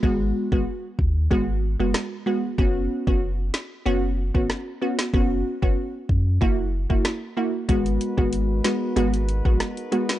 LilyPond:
<<
  \new Staff \with { instrumentName = "Brass ensemble" } { \time 4/4 \key gis \minor \tempo 4 = 94 r1 | r1 | r1 | <gis dis' fis' ais' b'>1 | }
  \new Staff \with { instrumentName = "Synth pluck" } { \time 4/4 \key gis \minor <gis b fis'>8. <gis b fis'>16 r4 <gis b fis'>16 r8 <gis b fis'>16 r8 <gis b fis'>16 r16 | <b cis' fis'>8. <b cis' fis'>16 r4 <b cis' fis'>16 r8 <b cis' fis'>16 r8 <b cis' fis'>16 r16 | <b cis' fis'>8. <b cis' fis'>16 r4 <ais e' fis'>16 r8 <ais e' fis'>16 r8 <ais e' fis'>16 r16 | <gis b fis'>8. <gis b fis'>8. <gis b fis'>8 <gis b fis'>16 r8 <gis b fis'>16 r8 <gis b fis'>16 r16 | }
  \new Staff \with { instrumentName = "Sub bass" } { \clef bass \time 4/4 \key gis \minor gis,,8 r16 gis,,16 r8 dis,8 gis,,8. fis,,16 r4 | fis,,8 r16 fis,,8. r8 fis,,8. gis,,16 r4 | fis,,8 r16 fis,,16 r8 fis,8 fis,,8. fis,,16 r4 | gis,,8 r16 gis,,8. r8 gis,,8. ais,,16 r4 | }
  \new DrumStaff \with { instrumentName = "Drums" } \drummode { \time 4/4 bd8. bd16 r8 bd8 bd4 <ss sn>4 | bd8. bd16 r8 sn8 r8. bd16 <ss sn>8. sn16 | bd8. bd16 r8 bd8 bd8. bd16 <ss sn>4 | <hh bd>16 hh16 hh16 bd16 hh8 <hh sn>8 hh16 hh16 hh16 bd16 <hh ss sn>16 hh16 hh16 sn16 | }
>>